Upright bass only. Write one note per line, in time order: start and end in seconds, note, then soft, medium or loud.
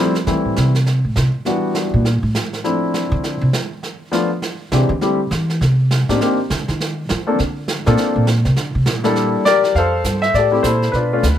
0.27 0.45 E3 medium
0.45 0.56 A2 medium
0.58 1.02 C3 medium
1.04 1.16 A2 medium
1.16 1.27 C3 medium
1.94 2.21 A#2 medium
2.23 2.34 A2 medium
3.12 3.40 D3 loud
3.41 3.48 C3 medium
4.72 4.88 C3 medium
4.89 5.28 D3 medium
5.31 5.59 E3 loud
5.61 6.05 C3 medium
6.09 6.20 A2 soft
6.50 6.68 D3 medium
6.68 7.06 D#3 medium
7.10 7.37 F3 loud
7.40 7.84 D3 medium
7.87 7.94 A#2 loud
8.16 8.43 A#2 medium
8.46 8.58 C3 medium
8.58 8.74 D3 medium
8.75 8.87 C3 medium
8.87 9.34 A#2 medium
9.75 10.04 F2 medium
10.04 10.33 G2 medium
10.34 10.63 A2 medium
10.64 10.93 A#2 medium
10.93 11.22 B2 medium
11.23 11.39 D2 medium